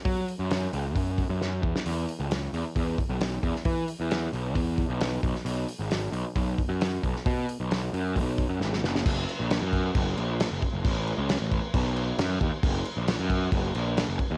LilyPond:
<<
  \new Staff \with { instrumentName = "Picked electric bass" } { \clef bass \time 4/4 \key b \major \tempo 4 = 134 fis8 r16 fis,8. cis,8 fis,8. fis,8. e,16 r16 | e,8 r16 cis,8. e,16 r16 e,8 r16 b,,8. e,16 r16 | e8 r16 e,8. b,,8 e,8. b,,8. b,,16 r16 | b,,8 r16 gis,,8. b,,16 r16 b,,8 r16 fis,8. b,,16 r16 |
b,8 r16 b,,8. fis,8 b,,8. fis,16 gis,,8 fis,,8 | \key fis \major fis,,8 r16 ais,,8 fis,8. fis,,8 ais,,8. fis,,16 r16 fis,,16 | a,,8. cis,8 a,,8 r16 b,,4 fis,8 dis,16 r16 | fis,,8 r16 ais,,8 fis,8. fis,,8 ais,,8. fis,,16 r16 dis,16 | }
  \new DrumStaff \with { instrumentName = "Drums" } \drummode { \time 4/4 <hho bd>8 hho8 <hho sn>8 hho8 <hho bd>8 <hho bd>8 sn8 bd16 sn16 | hho8 hho8 <hho sn>8 hho8 <hho bd>8 <hho bd>8 <hho sn>8 <hho bd>16 sn16 | <hho bd>8 hho8 <hho sn>8 hho8 <hho bd>8 <hho bd>8 <hho sn>8 <hho bd>16 sn16 | hho8 hho8 <hho sn>8 hho8 <hho bd>8 <hho bd>8 <hho sn>8 <hho bd>16 sn16 |
<hho bd>8 hho8 <hho sn>8 hho8 <hho bd>8 <hho bd>8 sn16 sn16 sn16 sn16 | <cymc bd>8 cymc8 <cymc sn>8 <cymc bd>8 <cymc bd>8 cymc8 <cymc sn>8 <cymc bd>8 | <cymc bd>8 cymc8 <cymc sn>8 <cymc bd>8 <cymc bd>8 cymc8 <cymc sn>8 <cymc bd>8 | <cymc bd>8 cymc8 <cymc sn>8 <cymc bd>8 <cymc bd>8 cymc8 <cymc sn>8 <cymc bd>8 | }
>>